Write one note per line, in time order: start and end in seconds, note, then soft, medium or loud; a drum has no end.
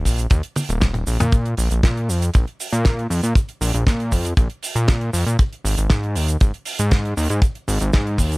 0.05 0.27 A#1 medium
0.05 kick medium
0.05 open hi-hat loud
0.05 shaker medium
0.19 closed hi-hat medium
0.19 shaker medium
0.30 0.42 D#2 medium
0.30 kick loud
0.30 closed hi-hat medium
0.30 shaker medium
0.43 closed hi-hat medium
0.56 open hi-hat loud
0.56 high tom medium
0.56 shaker medium
0.69 1.04 D#1 loud
0.69 closed hi-hat medium
0.69 shaker medium
0.81 kick loud
0.81 snare loud
0.81 closed hi-hat medium
0.81 mid tom medium
0.81 shaker medium
0.94 closed hi-hat soft
0.94 mid tom medium
1.07 1.18 A#1 medium
1.07 open hi-hat loud
1.07 shaker medium
1.20 1.55 A#2 medium
1.20 closed hi-hat medium
1.20 mid tom loud
1.20 shaker medium
1.32 kick loud
1.32 closed hi-hat medium
1.32 shaker medium
1.46 closed hi-hat soft
1.57 1.69 A#1 loud
1.57 open hi-hat loud
1.57 shaker loud
1.71 1.81 A#1 medium
1.71 closed hi-hat medium
1.71 shaker medium
1.83 2.10 A#2 medium
1.83 kick loud
1.83 snare loud
1.83 closed hi-hat medium
1.83 shaker soft
1.97 closed hi-hat medium
2.09 2.30 F2 medium
2.09 open hi-hat loud
2.09 shaker medium
2.22 closed hi-hat medium
2.22 shaker medium
2.34 2.45 A#1 medium
2.34 kick loud
2.34 closed hi-hat medium
2.34 shaker soft
2.47 closed hi-hat soft
2.60 open hi-hat loud
2.60 shaker medium
2.73 3.07 A#2 loud
2.73 closed hi-hat medium
2.73 shaker medium
2.85 kick loud
2.85 snare loud
2.85 closed hi-hat medium
2.85 shaker medium
2.99 closed hi-hat soft
3.10 3.21 F2 loud
3.10 open hi-hat loud
3.10 shaker medium
3.23 3.34 A#2 medium
3.23 closed hi-hat medium
3.23 shaker medium
3.35 kick loud
3.35 closed hi-hat medium
3.35 shaker medium
3.49 closed hi-hat soft
3.61 3.72 A#1 medium
3.61 open hi-hat loud
3.61 shaker medium
3.74 3.85 A#1 medium
3.74 closed hi-hat medium
3.74 shaker medium
3.87 4.14 A#2 medium
3.87 kick loud
3.87 snare loud
3.87 closed hi-hat medium
3.87 shaker medium
4.00 closed hi-hat soft
4.12 4.34 F2 medium
4.12 kick medium
4.12 open hi-hat loud
4.12 shaker medium
4.25 closed hi-hat medium
4.25 shaker medium
4.37 4.48 A#1 medium
4.37 kick loud
4.37 closed hi-hat medium
4.37 shaker soft
4.50 closed hi-hat medium
4.63 open hi-hat loud
4.63 shaker medium
4.75 5.10 A#2 loud
4.75 closed hi-hat medium
4.75 shaker medium
4.88 kick loud
4.88 snare loud
4.88 closed hi-hat medium
4.88 shaker medium
5.01 closed hi-hat soft
5.13 5.25 F2 loud
5.13 open hi-hat loud
5.13 shaker medium
5.27 5.37 A#2 medium
5.27 closed hi-hat medium
5.27 shaker medium
5.39 kick loud
5.39 closed hi-hat medium
5.39 shaker soft
5.53 closed hi-hat soft
5.64 5.76 G#1 loud
5.64 open hi-hat loud
5.64 shaker medium
5.77 5.88 G#1 medium
5.77 closed hi-hat medium
5.77 shaker medium
5.90 6.17 G#2 medium
5.90 kick loud
5.90 snare loud
5.90 closed hi-hat medium
5.90 shaker medium
6.03 closed hi-hat soft
6.16 6.37 D#2 medium
6.16 open hi-hat loud
6.16 shaker medium
6.28 closed hi-hat medium
6.28 shaker medium
6.41 6.52 G#1 medium
6.41 kick loud
6.41 closed hi-hat medium
6.41 shaker medium
6.54 closed hi-hat soft
6.66 open hi-hat loud
6.66 shaker medium
6.79 7.14 G#2 loud
6.79 closed hi-hat medium
6.79 shaker medium
6.91 kick loud
6.91 snare loud
6.91 closed hi-hat medium
6.91 shaker medium
7.05 closed hi-hat soft
7.17 7.28 D#2 loud
7.17 open hi-hat loud
7.17 shaker medium
7.30 7.41 G#2 medium
7.30 closed hi-hat medium
7.30 shaker medium
7.42 kick loud
7.42 closed hi-hat medium
7.42 shaker soft
7.55 closed hi-hat soft
7.68 7.79 G#1 loud
7.68 open hi-hat loud
7.68 shaker medium
7.80 7.91 G#1 medium
7.80 closed hi-hat medium
7.80 shaker medium
7.93 8.20 G#2 medium
7.93 kick loud
7.93 snare loud
7.93 closed hi-hat medium
7.93 shaker soft
8.07 closed hi-hat soft
8.18 8.38 D#2 medium
8.18 kick medium
8.18 open hi-hat loud
8.18 shaker medium
8.32 closed hi-hat medium
8.32 shaker medium